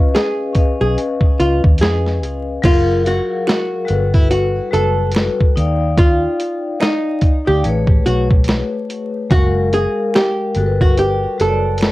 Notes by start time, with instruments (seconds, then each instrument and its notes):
Already playing: vibraphone C#4 B4 D#5 F5, hollow-body jazz guitar F4
0.15 hollow-body jazz guitar G#4, snare, closed hi-hat
0.53 vibraphone C#4 B4 D#5, kick, closed hi-hat
0.57 vibraphone F5
0.81 fingered electric bass B1, hollow-body jazz guitar G#4
0.98 closed hi-hat
1.21 kick
1.40 fingered electric bass C#2, hollow-body jazz guitar F4, closed hi-hat
1.64 fingered electric bass D#2, kick
1.78 fingered electric bass F2, hollow-body jazz guitar G#4, closed hi-hat
1.83 snare
2.07 snare
2.23 fingered electric bass C#2, closed hi-hat
2.62 fingered electric bass F#1, vibraphone F#3 G#4 F5, hollow-body jazz guitar F4, kick, closed hi-hat, crash
2.66 vibraphone A#4
3.06 hollow-body jazz guitar F#4, closed hi-hat
3.47 hollow-body jazz guitar F#4, finger snap, snare, closed hi-hat
3.85 vibraphone G3 F#4 A4, closed hi-hat
3.89 fingered electric bass G1, vibraphone B4
4.14 hollow-body jazz guitar E4, kick
4.31 hollow-body jazz guitar F#4, closed hi-hat
4.71 fingered electric bass F#1, vibraphone G3 F#4 A4 B4, hollow-body jazz guitar A4, closed hi-hat
5.12 finger snap, closed hi-hat
5.16 snare
5.40 kick
5.56 fingered electric bass D#2, vibraphone D#4 D5 F5, closed hi-hat
5.60 vibraphone G5
5.98 hollow-body jazz guitar F4, kick, closed hi-hat
6.40 closed hi-hat
6.81 hollow-body jazz guitar D#4, finger snap, snare, closed hi-hat
7.21 kick, closed hi-hat
7.45 fingered electric bass D2, vibraphone D#4 D5 F5, hollow-body jazz guitar G4
7.49 vibraphone G5
7.64 fingered electric bass A1, vibraphone A3 G#4 B4, closed hi-hat
7.68 vibraphone C#5
7.87 kick
8.06 fingered electric bass B1, hollow-body jazz guitar F#4, closed hi-hat
8.31 kick
8.44 finger snap, closed hi-hat
8.49 snare
8.90 closed hi-hat
9.30 fingered electric bass F#1, vibraphone G#3 F5, hollow-body jazz guitar F#4, kick, closed hi-hat
9.34 vibraphone A#4
9.73 hollow-body jazz guitar G#4, closed hi-hat
10.14 hollow-body jazz guitar G4, finger snap, snare, closed hi-hat
10.55 fingered electric bass G1, vibraphone G3 F#4 A4, closed hi-hat
10.59 vibraphone A#4
10.66 vibraphone B4
10.81 hollow-body jazz guitar F#4, kick
10.97 hollow-body jazz guitar G4, closed hi-hat
11.38 fingered electric bass F#1, vibraphone G3 F#4 A4 C#5, hollow-body jazz guitar A4, closed hi-hat
11.48 vibraphone D5
11.78 finger snap, closed hi-hat
11.82 snare